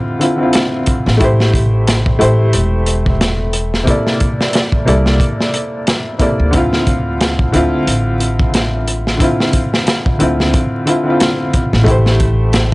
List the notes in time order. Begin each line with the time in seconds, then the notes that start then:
Already playing: D3 C4 E4 F4
0.19 D3 C4 E4 F4, closed hi-hat
0.36 D3 C4
0.41 E4 F4
0.53 snare, closed hi-hat
0.86 kick, closed hi-hat
1.06 A1, snare
1.17 A3 E4, kick, closed hi-hat
1.22 G4 C5
1.40 snare
1.54 kick, closed hi-hat
1.87 snare, closed hi-hat
2.06 kick
2.19 A1 A3 E4 G4 C5, closed hi-hat
2.53 E1, closed hi-hat
2.86 closed hi-hat
3.06 kick
3.21 snare, closed hi-hat
3.53 closed hi-hat
3.74 snare
3.84 C3 A#3 E4, kick, closed hi-hat
3.89 A4 D5
4.07 snare
4.20 kick, closed hi-hat
4.41 snare
4.53 snare, closed hi-hat
4.72 kick
4.85 C2 C3 A#3 E4 A4 D5, closed hi-hat
5.06 snare
5.20 kick, closed hi-hat
5.41 snare
5.54 closed hi-hat
5.87 snare, closed hi-hat
6.19 C3 A#3 E4 A4 D5, kick, closed hi-hat
6.40 D2
6.51 D3 C4, kick, closed hi-hat
6.55 E4 F4
6.73 snare
6.87 kick, closed hi-hat
7.21 snare, closed hi-hat
7.39 kick
7.52 D2 D3 C4 E4 F4, closed hi-hat
7.87 A1, closed hi-hat
8.20 closed hi-hat
8.39 kick
8.54 snare, closed hi-hat
8.88 closed hi-hat
9.07 snare
9.17 D3 C4, kick, closed hi-hat
9.22 E4 F4
9.40 snare
9.53 kick, closed hi-hat
9.74 snare
9.87 snare, closed hi-hat
10.06 kick
10.19 D2 D3 C4 E4 F4, closed hi-hat
10.40 snare
10.54 kick, closed hi-hat
10.85 D3 C4 E4 F4, closed hi-hat
11.03 D3 C4
11.08 E4 F4
11.20 snare, closed hi-hat
11.54 kick, closed hi-hat
11.73 A1, snare
11.84 A3 E4, kick, closed hi-hat
11.88 G4 C5
12.06 snare
12.20 kick, closed hi-hat
12.53 snare, closed hi-hat